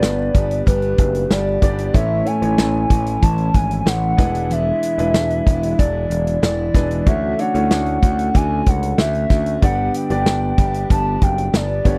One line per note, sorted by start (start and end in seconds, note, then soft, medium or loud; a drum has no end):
0.00 0.29 G1 medium
0.00 0.30 G2 medium
0.00 0.33 G3 soft
0.00 0.34 B3 soft
0.00 1.61 B3 medium
0.00 0.35 D4 medium
0.00 1.62 D4 medium
0.00 0.34 G4 medium
0.00 1.62 G4 medium
0.00 0.79 B4 medium
0.00 0.63 D5 loud
0.00 1.63 D5 medium
0.00 snare loud
0.00 closed hi-hat medium
0.34 0.61 G1 medium
0.34 0.65 G3 medium
0.34 0.66 B3 medium
0.34 0.66 D4 medium
0.34 0.67 G4 medium
0.34 kick medium
0.34 closed hi-hat medium
0.51 closed hi-hat medium
0.66 0.93 G1 loud
0.66 1.29 G3 medium
0.66 1.30 B3 medium
0.66 1.30 D4 medium
0.66 1.31 G4 medium
0.66 1.33 B4 loud
0.66 kick medium
0.66 closed hi-hat medium
0.82 closed hi-hat soft
0.98 1.25 F#1 loud
0.98 kick medium
0.98 closed hi-hat medium
1.15 closed hi-hat soft
1.30 1.57 G1 medium
1.30 1.61 G3 medium
1.30 1.61 B3 medium
1.30 1.62 D4 medium
1.30 1.63 G4 medium
1.30 1.94 D5 loud
1.30 snare medium
1.30 closed hi-hat medium
1.61 1.89 G1 medium
1.61 1.94 G3 medium
1.61 1.85 B3 medium
1.61 1.94 B3 medium
1.61 1.85 D4 medium
1.61 1.95 D4 medium
1.61 1.86 G4 medium
1.61 1.95 G4 medium
1.61 1.86 D5 medium
1.61 kick medium
1.61 closed hi-hat medium
1.78 closed hi-hat medium
1.93 2.21 A1 loud
1.93 2.42 A2 medium
1.93 2.86 A2 medium
1.93 2.42 E3 medium
1.93 2.17 A3 medium
1.93 2.43 A3 medium
1.93 2.17 C#4 medium
1.93 2.42 C#4 medium
1.93 2.17 E4 medium
1.93 2.41 E4 medium
1.93 2.18 C#5 medium
1.93 2.28 E5 loud
1.93 kick loud
1.93 closed hi-hat medium
2.25 2.37 A3 medium
2.25 2.38 C#4 medium
2.25 2.38 E4 medium
2.25 2.38 C#5 medium
2.25 3.24 G#5 loud
2.25 closed hi-hat medium
2.42 2.55 A1 medium
2.42 3.34 A3 medium
2.42 2.89 A3 soft
2.42 3.34 C#4 medium
2.42 2.90 C#4 medium
2.42 2.90 E4 medium
2.42 3.35 E4 medium
2.42 3.35 C#5 medium
2.42 closed hi-hat medium
2.58 2.85 A1 medium
2.58 snare loud
2.58 closed hi-hat medium
2.90 3.17 A1 medium
2.90 3.21 E3 medium
2.90 3.22 A3 medium
2.90 3.22 C#4 medium
2.90 3.23 E4 medium
2.90 kick medium
2.90 closed hi-hat medium
3.06 closed hi-hat medium
3.22 3.49 A1 medium
3.22 3.85 E3 medium
3.22 3.85 A3 medium
3.22 3.86 C#4 medium
3.22 3.88 E4 medium
3.22 3.57 A5 loud
3.22 kick medium
3.22 closed hi-hat medium
3.38 closed hi-hat soft
3.54 3.81 G#1 medium
3.54 3.80 G#5 loud
3.54 kick medium
3.54 closed hi-hat medium
3.71 closed hi-hat soft
3.80 3.89 G#5 medium
3.86 4.12 A1 loud
3.86 4.17 E3 medium
3.86 4.18 A3 medium
3.86 4.19 C#4 medium
3.86 4.19 E4 medium
3.86 4.54 F#5 loud
3.86 snare loud
3.86 closed hi-hat medium
4.17 4.71 E1 medium
4.17 4.49 E3 medium
4.17 5.10 E3 medium
4.17 4.82 G#3 medium
4.17 4.50 G#3 medium
4.17 4.82 D4 medium
4.17 4.50 D4 medium
4.17 4.83 E4 medium
4.17 4.50 E4 medium
4.17 4.83 B4 medium
4.17 kick loud
4.17 snare soft
4.17 closed hi-hat medium
4.35 closed hi-hat medium
4.50 4.98 E2 medium
4.50 4.98 B2 medium
4.50 4.99 E3 medium
4.50 4.99 G#3 medium
4.50 4.98 D4 medium
4.50 4.97 E4 medium
4.50 5.78 E5 loud
4.50 closed hi-hat medium
4.83 closed hi-hat medium
4.98 5.12 E1 medium
4.98 5.45 E3 soft
4.98 5.90 G#3 medium
4.98 5.46 G#3 soft
4.98 5.91 D4 medium
4.98 5.47 D4 soft
4.98 5.46 E4 medium
4.98 5.91 E4 medium
4.98 5.91 B4 medium
4.98 closed hi-hat medium
5.14 5.41 E1 medium
5.14 snare loud
5.14 closed hi-hat medium
5.30 closed hi-hat soft
5.46 5.73 E1 medium
5.46 5.77 E3 medium
5.46 5.78 G#3 medium
5.46 5.78 D4 medium
5.46 5.79 E4 medium
5.46 kick medium
5.46 closed hi-hat medium
5.63 closed hi-hat medium
5.78 6.05 E1 medium
5.78 6.41 E3 medium
5.78 6.42 G#3 medium
5.78 6.43 D4 medium
5.78 6.43 E4 medium
5.78 6.39 D5 loud
5.78 kick medium
5.78 closed hi-hat medium
6.10 6.37 E1 medium
6.10 closed hi-hat medium
6.27 closed hi-hat soft
6.42 6.69 E1 loud
6.42 6.73 E3 medium
6.42 6.74 G#3 medium
6.42 6.75 D4 medium
6.42 6.75 E4 medium
6.42 7.09 D5 loud
6.42 snare loud
6.42 closed hi-hat medium
6.74 7.01 E1 medium
6.74 7.06 E3 medium
6.74 6.97 G#3 medium
6.74 7.07 G#3 medium
6.74 6.98 D4 medium
6.74 7.07 D4 medium
6.74 6.98 E4 medium
6.74 6.98 B4 medium
6.74 kick medium
6.74 snare soft
6.74 closed hi-hat medium
6.91 closed hi-hat soft
7.06 7.33 D2 medium
7.06 7.98 D3 medium
7.06 7.54 D3 medium
7.06 7.29 A3 medium
7.06 7.55 A3 medium
7.06 7.54 C#4 medium
7.06 7.29 D4 medium
7.06 7.30 F#4 medium
7.06 7.53 F#4 medium
7.06 7.30 C#5 medium
7.06 7.41 E5 loud
7.06 kick loud
7.06 closed hi-hat medium
7.38 7.50 A3 medium
7.38 7.50 D4 medium
7.38 7.50 F#4 medium
7.38 7.51 C#5 medium
7.38 8.37 F#5 loud
7.38 closed hi-hat medium
7.54 7.68 D2 medium
7.54 8.46 A3 medium
7.54 8.02 A3 soft
7.54 8.47 C#4 medium
7.54 8.03 C#4 medium
7.54 7.61 E4 medium
7.54 8.02 F#4 medium
7.54 8.47 C#5 medium
7.54 closed hi-hat soft
7.62 8.50 F#4 medium
7.71 7.97 D2 medium
7.71 snare loud
7.71 closed hi-hat medium
7.86 closed hi-hat soft
8.02 8.29 D2 medium
8.02 8.33 D3 medium
8.02 8.34 A3 medium
8.02 8.35 C#4 medium
8.02 8.35 F#4 medium
8.02 kick medium
8.02 closed hi-hat medium
8.19 closed hi-hat medium
8.34 8.61 D2 loud
8.34 8.98 D3 medium
8.34 8.98 A3 medium
8.34 8.99 C#4 medium
8.34 8.99 F#4 medium
8.34 8.70 G#5 loud
8.34 kick medium
8.34 closed hi-hat medium
8.66 8.93 C#2 medium
8.66 8.99 F#5 medium
8.66 kick medium
8.66 closed hi-hat medium
8.83 closed hi-hat medium
8.98 9.25 D2 loud
8.98 9.29 D3 medium
8.98 9.30 A3 medium
8.98 9.30 C#4 medium
8.98 9.31 F#4 medium
8.98 9.59 E5 loud
8.98 snare loud
8.98 closed hi-hat medium
9.15 closed hi-hat soft
9.30 9.56 D2 medium
9.30 9.61 D3 medium
9.30 9.62 A3 medium
9.30 9.63 C#4 medium
9.30 9.63 F#4 medium
9.30 kick medium
9.30 snare soft
9.30 closed hi-hat medium
9.46 closed hi-hat medium
9.61 9.89 G1 medium
9.61 10.54 G2 medium
9.61 10.10 G2 medium
9.61 10.10 D3 medium
9.61 10.11 G3 medium
9.61 9.96 B3 medium
9.61 10.11 B3 medium
9.61 9.97 D4 medium
9.61 10.10 D4 medium
9.61 9.97 G4 medium
9.61 10.09 G4 medium
9.61 9.97 D5 medium
9.61 9.93 F#5 loud
9.61 kick medium
9.61 closed hi-hat medium
9.94 10.87 G5 loud
9.94 closed hi-hat medium
10.10 10.23 G1 medium
10.10 10.57 G3 soft
10.10 11.02 B3 medium
10.10 10.58 B3 medium
10.10 11.02 D4 medium
10.10 10.58 D4 medium
10.10 10.58 G4 medium
10.10 11.02 G4 medium
10.10 11.03 D5 medium
10.10 closed hi-hat medium
10.26 10.52 G1 medium
10.26 snare loud
10.26 closed hi-hat medium
10.58 10.84 G1 medium
10.58 10.88 G3 medium
10.58 10.89 B3 medium
10.58 10.90 D4 medium
10.58 10.91 G4 medium
10.58 kick medium
10.58 closed hi-hat medium
10.74 closed hi-hat medium
10.90 11.16 G1 medium
10.90 11.52 G3 medium
10.90 11.53 B3 medium
10.90 11.54 D4 medium
10.90 11.54 G4 medium
10.90 11.24 A5 medium
10.90 kick medium
10.90 closed hi-hat medium
11.21 11.48 F#1 medium
11.21 11.57 G5 loud
11.21 kick medium
11.21 closed hi-hat medium
11.38 closed hi-hat soft
11.53 11.80 G1 medium
11.53 11.84 G3 medium
11.53 11.85 B3 medium
11.53 11.86 D4 medium
11.53 11.87 G4 medium
11.53 11.98 D5 medium
11.53 snare loud
11.53 closed hi-hat medium
11.84 11.98 G1 medium
11.84 11.98 G3 medium
11.84 11.98 B3 medium
11.84 11.98 D4 medium
11.84 11.98 G4 medium
11.84 11.98 C#5 medium
11.84 kick medium
11.84 closed hi-hat medium